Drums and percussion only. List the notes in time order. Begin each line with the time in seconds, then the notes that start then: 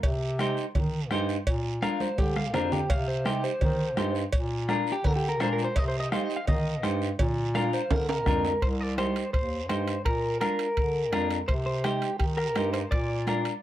0.03 bombo low, cowbell, high conga, long guiro
0.39 bombo rim, high conga, short guiro
0.57 short guiro
0.75 bombo low, cowbell, high conga, low conga, long guiro
1.11 bombo rim, high conga, short guiro
1.29 short guiro
1.47 bombo low, cowbell, high conga, long guiro
1.82 bombo rim, high conga, short guiro
2.00 high conga, short guiro
2.18 bombo low, cowbell, high conga, long guiro
2.36 bombo rim, high conga
2.54 bombo rim, low conga, low timbale, short guiro
2.72 low conga, short guiro
2.90 bombo low, cowbell, high conga, long guiro
3.25 bombo rim, high conga, short guiro
3.44 short guiro
3.61 bombo low, cowbell, high conga, low conga, long guiro
3.97 bombo rim, high conga, low timbale, short guiro
4.15 short guiro
4.33 bombo low, cowbell, high conga, long guiro
4.69 bombo rim, high conga, short guiro
4.87 short guiro
5.04 bombo low, cowbell, high conga, low conga, long guiro
5.40 bombo rim, high conga, low timbale, short guiro
5.58 short guiro
5.76 bombo low, cowbell, high conga, long guiro
6.12 bombo rim, high conga, short guiro
6.30 short guiro
6.47 bombo low, cowbell, high conga, low conga, long guiro
6.83 bombo rim, high conga, short guiro
7.02 short guiro
7.19 bombo low, cowbell, high conga, low conga, long guiro
7.55 bombo rim, high conga, short guiro
7.73 short guiro
7.91 bombo low, cowbell, high conga, low conga, high timbale, long guiro
8.09 high timbale
8.26 bombo low, bombo rim, high conga, low conga, short guiro
8.45 low timbale, short guiro
8.62 bombo low, high conga, high timbale, long guiro
8.98 bombo rim, high conga, high timbale, short guiro
9.16 high timbale, short guiro
9.34 bombo low, high conga, high timbale, long guiro
9.69 bombo rim, high conga, high timbale, short guiro
9.88 high timbale, short guiro
10.06 bombo low, high conga, high timbale, long guiro
10.41 bombo rim, high conga, high timbale, short guiro
10.59 high timbale, short guiro
10.77 bombo low, high conga, high timbale, long guiro
11.13 bombo rim, high conga, high timbale, short guiro
11.31 high timbale, short guiro
11.49 bombo low, high conga, high timbale, long guiro
11.84 bombo rim, high conga, high timbale, short guiro
12.02 high timbale, short guiro
12.20 bombo low, high conga, high timbale, long guiro
12.38 bombo rim
12.56 bombo rim, high conga, high timbale, low timbale, short guiro
12.74 high timbale, short guiro
12.92 bombo low, high conga, high timbale, long guiro
13.27 bombo rim, high conga, high timbale, short guiro
13.45 high timbale, short guiro